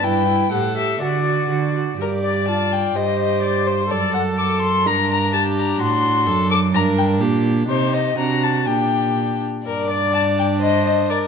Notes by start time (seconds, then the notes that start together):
0.03 G2 E4 B4 G5
0.27 E4
0.52 A2 G4 A4 F#5
0.76 G4 E5
1.01 D3 F#4 D5
1.25 F#4
1.50 D3 F#4
1.75 F#4
1.99 G2 G4 A#4 D5
2.24 D5
2.48 F4 A5
2.72 G5
2.95 G2 G4 C5 D#5
3.19 D#5
3.42 D5
3.67 C5
3.90 F#2 A4 D5
4.14 F#5
4.38 A4 D6
4.62 C6
4.85 G2 D4 A#4 A#5
5.10 A#5
5.33 G4 A5
5.58 A#5
5.79 A2 F#4 C6
6.26 F#2 A4
6.51 A4 D6
6.73 G2 D4 A#4 A#5
6.98 G5
7.20 A#2 G4
7.68 C3 D#4 G4 C5
7.94 D#5
8.17 C3 D4 F#4 A#5
8.43 A5
8.66 A#2 D4 G4 G5
9.66 G2 D4 A#4 D5
9.90 D5
10.14 A5
10.38 G5
10.62 C5 D#5
10.86 D#5
11.10 A#4 D5